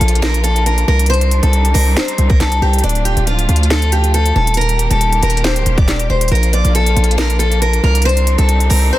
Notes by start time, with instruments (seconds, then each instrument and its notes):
Already playing: string section F3 A#3 D4 F4, steel-string acoustic guitar A4
0.01 808-style bass A#1, closed hi-hat
0.08 closed hi-hat
0.15 closed hi-hat
0.22 steel-string acoustic guitar A#4, snare, clap, closed hi-hat
0.34 closed hi-hat
0.43 steel-string acoustic guitar A4, closed hi-hat
0.56 closed hi-hat
0.66 steel-string acoustic guitar A#4, closed hi-hat
0.78 closed hi-hat
0.88 808-style bass C2, steel-string acoustic guitar A#4
0.99 closed hi-hat
1.06 string section G3 C4 D#4, steel-string acoustic guitar C5, closed hi-hat
1.14 closed hi-hat
1.21 closed hi-hat
1.31 closed hi-hat
1.43 808-style bass C2, steel-string acoustic guitar A4, closed hi-hat
1.53 closed hi-hat
1.65 closed hi-hat
1.74 808-style bass C2, steel-string acoustic guitar A#4, open hi-hat
1.97 steel-string acoustic guitar C5, snare, clap, closed hi-hat
2.08 closed hi-hat
2.18 808-style bass C2, closed hi-hat
2.29 steel-string acoustic guitar A#4, kick, closed hi-hat
2.40 808-style bass C2, steel-string acoustic guitar A4, snare, clap, closed hi-hat
2.52 closed hi-hat
2.62 808-style bass C2, steel-string acoustic guitar G4
2.73 closed hi-hat
2.78 closed hi-hat
2.84 808-style bass D1, string section F3 A3 F4, steel-string acoustic guitar D4, closed hi-hat
2.89 closed hi-hat
2.95 closed hi-hat
3.05 steel-string acoustic guitar G4, closed hi-hat
3.17 808-style bass D1, closed hi-hat
3.27 steel-string acoustic guitar F4, closed hi-hat
3.39 closed hi-hat
3.49 808-style bass D2, closed hi-hat
3.56 closed hi-hat
3.63 closed hi-hat
3.71 steel-string acoustic guitar A4, snare, clap, closed hi-hat
3.82 closed hi-hat
3.92 steel-string acoustic guitar G4, closed hi-hat
4.04 closed hi-hat
4.14 steel-string acoustic guitar A4, closed hi-hat
4.26 closed hi-hat
4.36 808-style bass D#1, steel-string acoustic guitar A4
4.47 closed hi-hat
4.54 string section D#3 G3 A#3 G4, steel-string acoustic guitar A#4, closed hi-hat
4.61 closed hi-hat
4.69 closed hi-hat
4.79 closed hi-hat
4.90 808-style bass D#1, steel-string acoustic guitar A4, closed hi-hat
5.01 closed hi-hat
5.13 closed hi-hat
5.23 808-style bass D#1, steel-string acoustic guitar A#4, closed hi-hat, open hi-hat
5.30 closed hi-hat
5.37 closed hi-hat
5.44 steel-string acoustic guitar C5, snare, clap, closed hi-hat
5.56 808-style bass D1, closed hi-hat
5.66 808-style bass D#1, closed hi-hat
5.78 steel-string acoustic guitar D5, kick, closed hi-hat
5.88 808-style bass D#1, snare, clap, closed hi-hat
6.00 closed hi-hat
6.10 808-style bass D#1, steel-string acoustic guitar C5
6.21 closed hi-hat
6.28 808-style bass A#1, string section F3 A#3 D4 F4, steel-string acoustic guitar A#4, closed hi-hat
6.35 closed hi-hat
6.43 closed hi-hat
6.53 steel-string acoustic guitar D5, closed hi-hat
6.65 808-style bass A#1, closed hi-hat
6.75 steel-string acoustic guitar A4, closed hi-hat
6.86 closed hi-hat
6.97 808-style bass A#1, closed hi-hat
7.04 closed hi-hat
7.11 closed hi-hat
7.18 steel-string acoustic guitar A#4, snare, clap, closed hi-hat
7.30 closed hi-hat
7.39 steel-string acoustic guitar A4, closed hi-hat
7.52 closed hi-hat
7.62 steel-string acoustic guitar A#4, closed hi-hat
7.73 closed hi-hat
7.84 808-style bass C2, steel-string acoustic guitar A#4
7.95 closed hi-hat
8.02 string section G3 C4 D#4, steel-string acoustic guitar C5, closed hi-hat
8.09 closed hi-hat
8.17 closed hi-hat
8.27 closed hi-hat
8.38 808-style bass C2, steel-string acoustic guitar A4, closed hi-hat
8.49 closed hi-hat
8.60 closed hi-hat
8.70 808-style bass C2, steel-string acoustic guitar A#4, open hi-hat
8.93 steel-string acoustic guitar C5